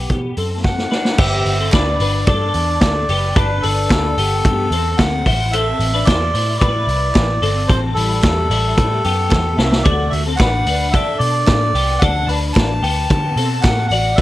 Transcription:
Already playing: clean electric guitar B3 G4
0.10 picked electric bass B2, kick, closed hi-hat
0.37 picked electric bass F#2, clean electric guitar C4 A4, open hi-hat
0.64 melodica F#5, kick, snare
0.78 snare
0.91 clean electric guitar D4 B4, snare
1.05 snare
1.18 picked electric bass G1, clean electric guitar B3 G4, melodica E5, kick, crash
1.46 picked electric bass G1, open hi-hat
1.60 clean electric guitar C4 A4
1.73 picked electric bass D2, clean electric guitar D4 B4, melodica D5, kick, snare, clap, hi-hat pedal, ride
2.00 picked electric bass G1, clean electric guitar D4 B4, open hi-hat
2.26 picked electric bass G2, clean electric guitar D4 A4, melodica D5, kick, hi-hat pedal, ride
2.54 picked electric bass E2, open hi-hat
2.81 picked electric bass D2, kick, snare, clap, hi-hat pedal, ride
3.09 picked electric bass F#1, clean electric guitar B3 G4, open hi-hat
3.35 picked electric bass G1, clean electric guitar D4 A4, melodica B4, kick, hi-hat pedal, ride
3.62 picked electric bass G1, clean electric guitar D4 B4, melodica A4, open hi-hat
3.90 picked electric bass D2, kick, snare, clap, hi-hat pedal, ride
4.17 picked electric bass G1, clean electric guitar B3 G4, open hi-hat
4.45 picked electric bass G2, kick, hi-hat pedal, ride
4.71 picked electric bass E2, clean electric guitar C4 A4, open hi-hat
4.97 picked electric bass D2, melodica F#5, kick, snare, clap, hi-hat pedal, ride
5.26 picked electric bass A1, clean electric guitar E4 C5, kick, open hi-hat
5.51 clean electric guitar C4 A4, melodica E5, hi-hat pedal, ride
5.79 picked electric bass A1, open hi-hat
5.94 clean electric guitar D4 B4
6.05 picked electric bass E2, clean electric guitar E4 C5, melodica D5, kick, snare, clap, hi-hat pedal, ride
6.34 picked electric bass A2, clean electric guitar E4 C5, open hi-hat
6.59 picked electric bass A2, clean electric guitar E4 B4, melodica D5, kick, hi-hat pedal, ride
6.87 picked electric bass C2, open hi-hat
7.15 picked electric bass A1, kick, snare, clap, hi-hat pedal, ride
7.42 picked electric bass G1, clean electric guitar C4 A4, open hi-hat
7.67 picked electric bass A1, clean electric guitar C4 A4, melodica C5, kick, hi-hat pedal, ride
7.94 picked electric bass A1, clean electric guitar G3 E4, melodica A4, open hi-hat
8.23 picked electric bass E2, kick, snare, clap, hi-hat pedal, ride
8.50 picked electric bass A1, clean electric guitar G3 E4, open hi-hat
8.77 picked electric bass A2, kick, hi-hat pedal, ride
9.04 picked electric bass F#2, clean electric guitar B3 G4, open hi-hat
9.31 picked electric bass E2, kick, snare, clap
9.57 picked electric bass C2, clean electric guitar C4 A4, melodica E5, snare
9.72 snare
9.83 picked electric bass D2, clean electric guitar A3 F#4, melodica D5, kick, hi-hat pedal, ride
10.10 picked electric bass D2, melodica E5, open hi-hat
10.26 clean electric guitar C4 A4
10.36 picked electric bass A1, clean electric guitar D4 B4, melodica F#5, kick, snare, clap, hi-hat pedal, ride
10.66 picked electric bass D2, clean electric guitar D4 B4, open hi-hat
10.91 picked electric bass D3, clean electric guitar D4 A4, melodica E5, kick, hi-hat pedal, ride
11.19 picked electric bass B2, melodica D5, open hi-hat
11.47 picked electric bass A2, kick, snare, clap, hi-hat pedal, ride
11.74 picked electric bass C2, clean electric guitar B3 G4, open hi-hat
11.99 picked electric bass D2, clean electric guitar A4, melodica F#5, kick, hi-hat pedal, ride
12.03 clean electric guitar D4
12.26 picked electric bass D2, clean electric guitar D4 B4, melodica A5, open hi-hat
12.53 picked electric bass A1, melodica A5, kick, snare, clap, hi-hat pedal, ride
12.83 picked electric bass D2, clean electric guitar B3 G4, open hi-hat
13.10 picked electric bass D3, kick, hi-hat pedal, ride
13.36 picked electric bass B2, clean electric guitar C4 A4, open hi-hat
13.62 picked electric bass A2, melodica F#5, kick, snare, clap, hi-hat pedal, ride
13.88 picked electric bass A1, melodica F#5, open hi-hat
13.92 clean electric guitar F#4 D5
14.15 picked electric bass B1, clean electric guitar F#4, melodica E5, kick, hi-hat pedal, ride

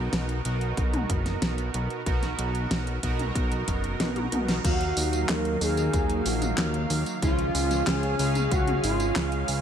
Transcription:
Already playing: analog polysynth B2 B3 D#4 F#4 A#4
0.13 analog synth bass B1, snare, closed hi-hat
0.29 closed hi-hat
0.45 analog synth bass B1, analog polysynth B2 B3 D#4 F#4 A#4, closed hi-hat
0.61 closed hi-hat
0.77 analog synth bass B1, kick, closed hi-hat
0.94 closed hi-hat, mid tom
1.09 analog synth bass F#1, kick, closed hi-hat
1.26 snare, closed hi-hat
1.42 analog synth bass B1, snare, closed hi-hat
1.58 closed hi-hat
1.74 analog synth bass B1, closed hi-hat
1.90 closed hi-hat
2.06 analog synth bass B1, analog polysynth B2 B3 D#4 F#4 A#4, kick, closed hi-hat
2.23 snare, closed hi-hat
2.39 analog synth bass B1, closed hi-hat
2.55 closed hi-hat
2.71 analog synth bass B1, snare, closed hi-hat
2.87 closed hi-hat
3.03 analog synth bass B1, analog polysynth B2 B3 D#4 F#4 A#4, kick, closed hi-hat
3.19 closed hi-hat, mid tom
3.35 analog synth bass B1, kick, closed hi-hat
3.52 closed hi-hat
3.68 analog synth bass F#1, kick, closed hi-hat
3.84 closed hi-hat
4.00 analog synth bass B1, snare, closed hi-hat, high tom
4.16 closed hi-hat, high tom
4.32 analog synth bass B1, closed hi-hat, mid tom
4.48 snare, closed hi-hat
4.64 analog synth bass D#2, analog synth pad D#3 F#3 A#3 F5, analog polysynth F#3 A#3 D#4 F5, analog synth lead F#4, kick, closed hi-hat, crash, tambourine
4.81 closed hi-hat
4.97 analog synth bass D#2, open hi-hat, tambourine
5.13 closed hi-hat, tambourine
5.29 analog synth bass D#2, analog synth lead A#4, snare, clap, closed hi-hat, tambourine
5.45 closed hi-hat
5.61 analog synth bass D#2, analog polysynth F#3 A#3 D#4 F5, analog synth lead G#4, open hi-hat, tambourine
5.77 closed hi-hat, tambourine
5.93 analog synth bass D#2, kick, closed hi-hat, tambourine
6.10 closed hi-hat
6.26 analog synth bass A#1, analog synth lead F#4, open hi-hat, tambourine
6.42 closed hi-hat, mid tom, tambourine
6.58 analog synth bass D#2, snare, clap, closed hi-hat, tambourine
6.74 closed hi-hat
6.90 analog synth bass D#2, open hi-hat, tambourine
7.06 closed hi-hat, tambourine
7.22 analog synth bass C#2, analog synth pad C#3 C#4 G#4 F5, analog polysynth F3 G#3 C#4 F4, analog synth lead F4, kick, closed hi-hat, tambourine
7.39 closed hi-hat
7.55 analog synth bass C#2, open hi-hat, tambourine
7.71 snare, closed hi-hat, tambourine
7.87 analog synth bass C#2, analog synth lead G#4, snare, clap, closed hi-hat, tambourine
8.03 closed hi-hat
8.19 analog synth bass C#2, analog polysynth C#3 G#3 C#4 F5, open hi-hat, tambourine
8.35 closed hi-hat, mid tom, tambourine
8.51 analog synth bass C#2, analog synth lead F#4, kick, closed hi-hat, tambourine
8.68 closed hi-hat, mid tom
8.84 analog synth bass G#1, analog synth lead F4, open hi-hat, tambourine
9.00 closed hi-hat, tambourine
9.16 analog synth bass C#2, snare, clap, closed hi-hat, tambourine
9.32 closed hi-hat
9.48 analog synth bass C#2, open hi-hat, tambourine

